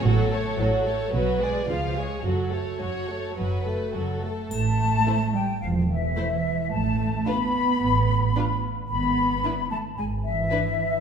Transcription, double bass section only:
0.04 A1
0.59 A1
1.12 B1
1.68 C#2
2.24 F#1
2.81 F#1
3.38 F#1
3.94 F#1
4.51 A1
5.62 E1
6.72 A1
7.81 A1
8.90 G#1
9.97 G#1

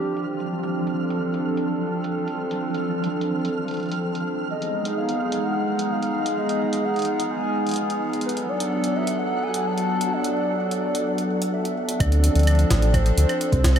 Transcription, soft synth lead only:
4.50 D#5
4.97 F5
5.44 F#5
5.91 F5
6.38 D#5
6.84 F#5
7.31 G#5
8.26 B4
8.49 D5
8.96 E5
9.19 F#5
9.43 G#5
9.66 A5
10.13 D5
11.54 E5
12.00 D5
12.94 C5

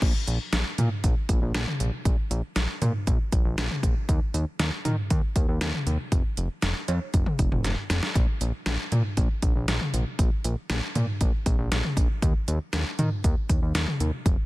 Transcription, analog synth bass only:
0.02 A#1
0.27 A#1
0.53 A#1
0.78 A#2
1.04 A#1
1.29 A#1
1.42 A#1
1.55 A#1
1.80 A#1
2.05 A#1
2.31 A#1
2.56 A#1
2.82 A#2
3.07 A#1
3.33 A#1
3.45 A#1
3.58 A#1
3.83 A#1
4.09 D#2
4.34 D#2
4.60 D#2
4.85 D#3
5.10 D#2
5.36 D#2
5.48 D#2
5.61 D#2
5.87 D#2
6.12 F1
6.37 F1
6.63 F1
6.88 F2
7.14 F1
7.39 F1
7.52 F1
7.65 F1
7.90 F1
8.15 A#1
8.41 A#1
8.66 A#1
8.92 A#2
9.17 A#1
9.43 A#1
9.55 A#1
9.68 A#1
9.94 A#1
10.19 A#1
10.45 A#1
10.70 A#1
10.95 A#2
11.21 A#1
11.46 A#1
11.59 A#1
11.71 A#1
11.97 A#1
12.22 D#2
12.48 D#2
12.73 D#2
12.99 D#3
13.24 D#2
13.49 D#2
13.62 D#2
13.75 D#2
14.00 D#2
14.26 F1

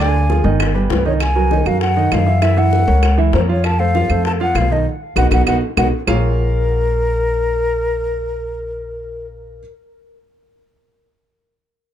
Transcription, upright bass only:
Already playing: D2
0.44 G1
0.90 C2
1.66 F#2
2.12 F#2
2.88 C#2
3.33 F2
4.09 F2
4.55 B1
5.16 B1
5.31 B1
5.46 B1
5.77 B1
6.07 A#1

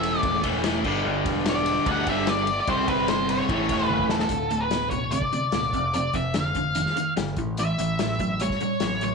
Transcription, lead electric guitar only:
Already playing: E5
0.19 D5
1.50 D5
1.91 F#5
2.09 E5
2.29 D5
2.60 D5
2.70 C5
2.89 B4
3.09 C5
3.30 C#5
3.86 B4
4.11 A4
4.21 A4
4.61 B4
4.90 C#5
5.12 D5
5.95 D5
6.15 E5
6.36 F5
7.60 E5
8.41 C#5
9.04 C#5

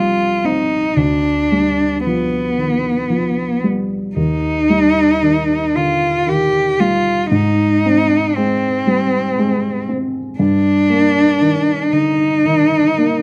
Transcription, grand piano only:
Already playing: C2 F3 G3 C4
0.44 C4
0.97 D2
1.52 G3
2.06 F3
2.58 D#3
3.10 F3
3.64 G3
4.16 D#2
4.70 G3
5.22 D#3
5.77 D3
6.27 D#3
6.80 G3
7.31 G#2
7.86 C4
8.38 G#3
8.87 G3
9.38 G#3
9.89 C4
10.39 G2
10.90 A#3
11.41 D#3
11.93 D3
12.45 D#3
12.98 A#3

